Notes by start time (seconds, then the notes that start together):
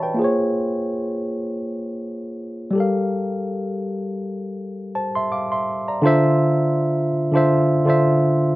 Already playing: E3 D4 F#4 G4 C#5 D5 E5 A5 B5 C#6
0.03 B4 G5
0.14 A#3 F4
0.19 G#4 C5
0.24 C#5
2.71 G3 G4
2.75 A4 A#4
2.80 F5
4.95 C5 A5
5.15 E5 C6
5.32 F5 D6
5.52 E5 C6
5.88 D5 A#5
6.02 D3 D4 F4 C5
6.07 E5
7.32 D3 D4 F4 C5
7.37 E5
7.85 D3 D4 F4 C5
7.90 E5